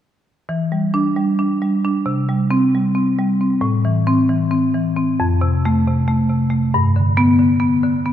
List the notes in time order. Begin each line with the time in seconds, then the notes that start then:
0.49 E3
0.72 G3
0.94 D4
1.16 G3
1.39 D4
1.62 G3
1.85 D4
2.06 C3
2.29 G3
2.51 C4
2.75 G3
2.95 C4
3.19 G3
3.41 C4
3.61 A2
3.85 E3
4.07 C4
4.29 E3
4.51 C4
4.74 E3
4.97 C4
5.20 F2
5.41 C3
5.65 A3
5.87 C3
6.08 A3
6.30 C3
6.50 A3
6.74 G2
6.96 D3
7.17 B3
7.39 D3
7.60 B3
7.84 D3
8.06 B3